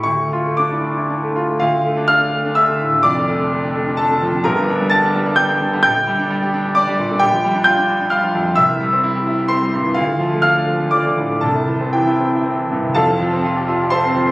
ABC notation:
X:1
M:3/4
L:1/16
Q:1/4=127
K:Dm
V:1 name="Grand piano"
^c'4 d'6 z2 | [Ff]4 [ff']4 [ee']4 | [dd']8 [Aa]4 | [Bb]4 [aa']4 [gg']4 |
[gg']8 [dd']4 | [K:F] [Gg]4 [gg']4 [ff']4 | [ee']8 [cc']4 | [Ff]4 [ff']4 [dd']4 |
[Aa]4 [Gg]6 z2 | [Afa]8 [cac']4 |]
V:2 name="Grand piano"
D,, A, F A, D E D E D A, F A, | D,, D, A, D A, D A, D A, D, A,, D, | [F,,,F,,] D, A, D A, D A, D A, D, F, D, | [G,,,G,,] G, D G, G D G, D G, D D, G, |
B,,, D, G, D G, G D G D G, B,, D, | [K:F] B,,, F, G, D F D G, D G, F, F,, F, | C,, E, G, C E G E G C G, G,, E, | D,, D, F, A, D A, F, A, F, D, A,, D, |
C,, C, E, C E, E C E C E, G,, C, | [F,,,F,,] C F, C F G F G F C F, C |]